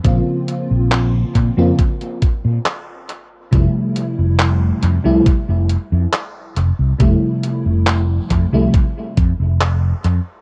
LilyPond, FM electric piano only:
\new Staff \with { instrumentName = "FM electric piano" } { \clef bass \time 4/4 \key f \major \tempo 4 = 69 <des f bes c' f'>4.~ <des f bes c' f'>16 <des f bes c' f'>16 r2 | <c f g a e'>4.~ <c f g a e'>16 <c f g a e'>16 r2 | <c f g a e'>4.~ <c f g a e'>16 <c f g a e'>16 r2 | }